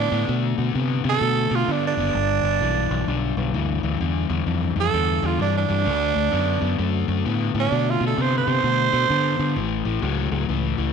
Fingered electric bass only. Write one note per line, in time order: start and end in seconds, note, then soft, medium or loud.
0.12 0.26 A2 medium
0.29 0.54 B2 loud
0.58 0.73 B2 medium
0.75 1.00 C3 medium
1.04 1.19 C3 medium
1.21 1.46 B2 medium
1.51 1.65 B2 medium
1.68 1.93 D3 medium
1.97 2.12 F#1 medium
2.14 2.39 G1 medium
2.43 2.58 G1 medium
2.61 2.86 B1 medium
2.91 3.05 B1 medium
3.08 3.32 B1 medium
3.37 3.51 B1 medium
3.54 3.79 D2 medium
3.83 3.98 D2 medium
4.00 4.25 E2 medium
4.30 4.44 E2 medium
4.47 4.71 F2 medium
4.76 4.90 F2 medium
4.94 5.18 E2 medium
5.23 5.37 E2 medium
5.39 5.64 G2 medium
5.70 5.88 G2 medium
5.86 6.11 D2 loud
6.15 6.30 D2 medium
6.33 6.57 F#2 medium
6.61 6.76 F#2 medium
6.79 7.04 F#2 medium
7.08 7.22 F#2 medium
7.26 7.50 A2 medium
7.54 7.69 A2 medium
7.72 7.96 B2 medium
8.01 8.15 B2 medium
8.18 8.42 C3 medium
8.47 8.62 C3 medium
8.63 8.88 B2 medium
8.93 9.08 B2 medium
9.10 9.35 D3 medium
9.39 9.58 D3 medium
9.56 9.81 A1 medium
9.85 10.00 A1 medium
10.03 10.27 C#2 medium
10.32 10.46 C#2 medium
10.49 10.74 C#2 medium
10.78 10.93 C#2 medium